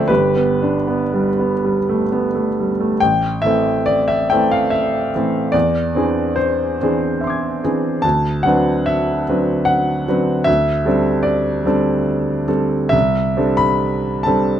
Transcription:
Already playing: F3 A3 C4 A4 C5 D5 E5 F5 G5
0.08 G1 G4 B4
0.36 B3
0.62 D4
0.87 B3
1.14 G3
1.39 B3
1.64 G3
1.89 A3
2.12 B3
2.35 A3
2.60 G3
2.80 A3
3.00 A1 G5
3.42 E3 A3 C4 E5
3.46 A4
3.86 D5
4.08 E5
4.30 E3 A3 C4 A4 G5
4.51 F5
4.70 E5
5.15 E3 A3 C4 A4
5.52 E2 D5
5.95 E3 C4 D4 G#4
6.36 C5
6.82 E3 C4 D4 G#4
7.21 E5 C6
7.27 D6 G#6
7.64 E3 C4 D4 G#4
8.02 D2 A5
8.43 F#3 C4 D4 F#5
8.47 B4
8.86 E5
9.29 F#3 C4 D4 B4
9.65 F#5
10.08 F#3 C4 D4 B4
10.44 D2 E5
10.85 G3 C4 D4 A4
11.23 D5
11.65 G3 C4 D4 A4
12.48 G3 C4 D4 A4
12.89 C2 E5
13.37 G3 C4 D4 A4
13.57 B5
14.23 G3 C4 D4 A4 A5

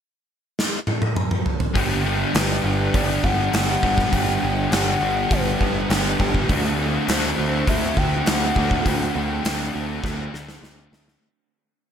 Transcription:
0.59 snare
0.87 high tom
1.02 high tom
1.16 mid tom
1.31 mid tom
1.46 floor tom
1.60 floor tom
1.75 G1 G2 D3 G3 B3 D4 G4, kick, open hi-hat
2.04 D3 G3 B3 D4 G4
2.33 G1 G2 D3 G3 B3 D4 B4, snare, open hi-hat
2.38 G4
2.63 G1 D3 G3 B3 D4 G4
2.67 G3
2.93 G1 G2 D3 G3 B3 D4 G4 D5, kick, open hi-hat
3.23 G1 D3 G3 B3 D4 G4 F#5, kick
3.51 G1 G2 D3 G3 B3 F#5, snare, open hi-hat
3.55 D4 G4
3.81 G1 D3 G3 B3 D4 G4, kick
3.85 G3
3.98 kick, snare
4.11 G1 G2 D3 G3 B3 D4 G4 G5, kick, open hi-hat
4.39 G1 D3 G3 B3 D4 G4 G5
4.44 G3
4.70 G1 G2 D3 G3 B3 D4 G4 F#5, snare, open hi-hat
5.00 G1 D3 G3 B3 D4 G4
5.29 G1 G2 D3 G3 B3 D4 G4 B4, kick, open hi-hat
5.59 G1 D3 G3 B3 D4 G4, kick
5.88 G1 G2 D3 G3 B3 D4 G4, snare, open hi-hat
5.93 G3
6.18 G1 D3 G3 B3 D4 G4, kick
6.35 kick
6.47 D2 D3 A3 C4 F#4, kick, open hi-hat
6.51 D4
6.77 A3 C4 D4 F#4
7.08 D2 D3 A3 C4 D4 F#4 C5, snare, open hi-hat
7.37 D2 A3 C4 D4 F#4
7.67 D2 D3 A3 C4 D4 F#4 E5, kick, open hi-hat
7.97 D2 A3 C4 D4 F#4 G5, kick
8.26 D2 D3 A3 C4 D4 F#4 F#5, snare, open hi-hat
8.56 D2 A3 C4 D4 F#4, kick
8.71 kick
8.84 D2 D3 A3 C4 F#4 G5, kick, open hi-hat
8.89 D4
9.14 D2 A3 C4 D4 F#4
9.44 D2 D3 A3 C4 D4 F#4, snare, open hi-hat
9.72 D2 A3 C4 D4 F#4
10.03 D2 D3 A3 C4 D4 F#4, kick, snare
10.32 D2 A3 C4 D4 F#4, snare
10.48 snare
10.62 D2 D3 A3 C4 D4 F#4, snare
10.91 D2 A3 C4 D4 F#4, snare
11.08 snare

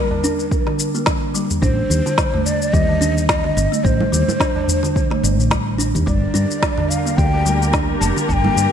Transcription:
Already playing: G3 A#4
0.11 tabla na, tabla ge
0.24 D4, shaker
0.39 tabla na, shaker
0.51 kick, shaker
0.67 D3, snare
0.79 tabla tin, shaker
0.95 A#3, shaker
1.06 kick, snare, shaker
1.35 G3, tabla tin, shaker
1.50 tabla ge, shaker
1.62 A1 D4 C5, kick, shaker
1.90 D#2, shaker
2.06 D3, shaker
2.18 kick, snare, shaker
2.33 A3, tabla na, tabla ge
2.46 D5, shaker
2.62 shaker
2.73 D#2 G3 D#5, kick, shaker
2.89 tabla na
3.01 D4, tabla tin, shaker
3.18 shaker
3.28 D#5, kick, snare, shaker
3.44 D3
3.57 G1, tabla tin, shaker
3.72 A3, shaker
3.84 A1 C5, kick, shaker
4.01 low conga
4.12 D#2 G3, shaker
4.28 low conga, shaker
4.40 D4, kick, snare, shaker
4.55 tabla na, tabla ge
4.68 tabla tin, tabla ge, shaker
4.83 D3, tabla na, shaker
4.96 kick, shaker
5.10 A3, snare
5.23 G1, tabla tin, shaker
5.39 A1, shaker
5.51 G3, kick, snare, shaker
5.78 D4, tabla tin, shaker
5.95 D#2, tabla ge, shaker
6.06 G1 D3 G3 A#3 G4 A#4 D5, kick, shaker
6.34 G2 D4, shaker
6.51 shaker
6.62 kick, snare, shaker
6.78 D3, tabla na, tabla ge
6.89 F5, shaker
7.06 A#3, shaker
7.17 D2 G5, kick, shaker
7.34 tabla na
7.45 G3, tabla tin, shaker
7.62 shaker
7.73 D4, kick, snare, shaker
8.01 F1 A5, tabla tin, shaker
8.17 D3, shaker
8.28 G1 A5, kick, shaker
8.33 G5
8.44 A#3, low conga
8.56 G2, shaker

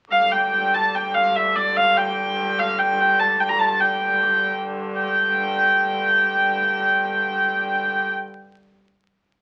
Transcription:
0.12 G2 D3 F5
0.32 G5
0.54 G5
0.74 A5
0.95 G5
1.15 F5
1.36 E5
1.56 D5
1.77 F5
1.97 G5
2.59 F5
2.79 G5
3.00 G5
3.19 A5
3.40 G5
3.49 A#5
3.59 A5
3.80 G5
4.99 G2 D3 G5

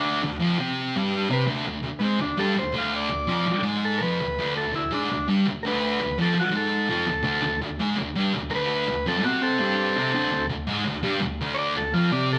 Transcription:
Already playing: D2 D3 D4
0.24 D2
0.40 F2 F3
0.59 C3 C4
0.96 G2 G3
1.30 C3 C4 B4
1.48 D2 D3
1.66 D2
1.84 D2
1.99 G#2 G#3 B3
2.04 C4
2.20 D2 D4
2.38 G2 G3 A4
2.56 D2 C5
2.73 D2 D3
2.78 F5
2.96 D5
3.09 D2
3.27 F2 F3
3.47 muted distorted electric guitar stroke
3.63 G#2 G#3
3.85 A4
3.98 F2 F3 A#4
4.03 B4
4.21 D2
4.39 D2 D3
4.56 D2 A4
4.73 D2 E4
4.91 G#2 G#3 D4
5.11 D2
5.28 G2 G3
5.46 D2
5.63 D2 D3 A#4
5.67 B4
6.01 D2
6.18 F2 F3 A4
6.35 muted distorted electric guitar stroke
6.40 F#4
6.51 G#2 G#3
6.57 A4
6.89 F2 F3
7.08 D2
7.23 D2 D3
7.42 D2
7.62 D2
7.80 G#2 G#3
7.97 D2
8.16 G2 G3
8.34 D2
8.50 D2 D3 A#4
8.55 B4
8.88 D2
9.06 F2 F3 A4
9.24 C3 C4 F#4
9.42 C4 A4
9.59 G2 G3
9.96 C3 C4
10.13 D2 D3
10.32 D2
10.49 D2
10.67 G#2 G#3
10.86 D2
11.03 G2 G3
11.21 D2
11.41 D2 D3
11.54 C#5
11.58 D5
11.76 D2 A4
11.94 F2 F3 F4
12.11 C3 C4 D5
12.33 A4

